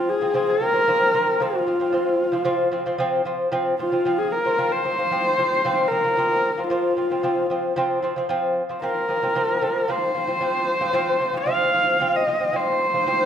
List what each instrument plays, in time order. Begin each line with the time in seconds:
Already playing: lute F3 C4, horsehead fiddle F4
0.09 horsehead fiddle G#4
0.21 lute F3 C4
0.34 lute F3 C4
0.50 horsehead fiddle A#4
0.60 lute F3 C4
0.73 lute F3 C4
0.88 lute F3 C4
1.14 lute F3 C4
1.40 lute F3 C4, horsehead fiddle F4
1.67 lute F3 C4
1.80 lute F3 C4
1.92 lute F3 C4
2.32 lute F3 C4
2.45 lute F3 C4
2.71 lute F3 C4
2.86 lute F3 C4
2.98 lute F3 C4
3.25 lute F3 C4
3.52 lute F3 C4
3.79 lute F3 C4, horsehead fiddle F4
3.92 lute F3 C4
4.05 lute F3 C4
4.19 horsehead fiddle G#4
4.32 horsehead fiddle A#4
4.44 lute F3 C4
4.58 lute F3 C4
4.72 horsehead fiddle C5
4.84 lute F3 C4
4.98 lute F3 C4
5.11 lute F3 C4
5.38 lute F3 C4
5.65 lute F3 C4
5.88 lute F3 C4, horsehead fiddle A#4
6.04 lute F3 C4
6.17 lute F3 C4
6.58 lute F3 C4
6.69 lute F3 C4, horsehead fiddle F4
6.97 lute F3 C4
7.10 lute F3 C4
7.23 lute F3 C4
7.50 lute F3 C4
7.76 lute F3 C4
8.03 lute F3 C4
8.16 lute F3 C4
8.29 lute F3 C4
8.69 lute F3 C4
8.82 lute F3 C4, horsehead fiddle A#4
9.08 lute F3 C4
9.22 lute F3 C4
9.35 lute F3 C4
9.61 lute F3 C4
9.88 lute F3 C4, horsehead fiddle C5
10.14 lute F3 C4
10.27 lute F3 C4
10.41 lute F3 C4
10.80 lute F3 C4
10.93 lute F3 C4
11.20 lute F3 C4
11.33 lute F3 C4
11.37 horsehead fiddle F5
11.46 lute F3 C4
11.74 lute F3 C4
12.00 lute F3 C4
12.16 horsehead fiddle D#5
12.27 lute F3 C4
12.40 lute F3 C4
12.52 lute F3 C4, horsehead fiddle C5
12.94 lute F3 C4
13.06 lute F3 C4